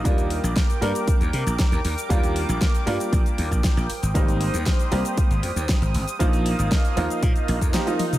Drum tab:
HH |xxoxxxoxxxoxxxox|xxoxxxoxxxoxxxox|xxoxxxoxxxoxxxox|xxoxxxoxxxoxxxox|
SH |xx-xxx-xxx-xxx-x|xx-xxx-xxx-xxx-x|xx-xxx-xxx-xxx-x|xx-xxx-xxx-xxx-x|
SD |----o-------o---|----o-------o---|----o-------o---|----o-------o---|
T1 |----------------|----------------|----------------|--------------o-|
T2 |----------------|----------------|----------------|---------------o|
BD |o---o---o---o---|o---o---o--oo---|o---o---o---o---|o---o---o--o----|